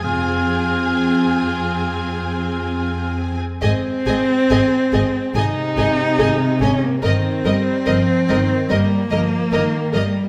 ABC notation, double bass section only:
X:1
M:4/4
L:1/8
Q:1/4=71
K:Ab
V:1 name="Double bass section" clef=bass
F,,,2 z6 | A,,, A,,, A,,, A,,, A,,, A,,, A,,, A,,, | G,,, G,,, G,,, G,,, G,,, G,,, G,,, G,,, |]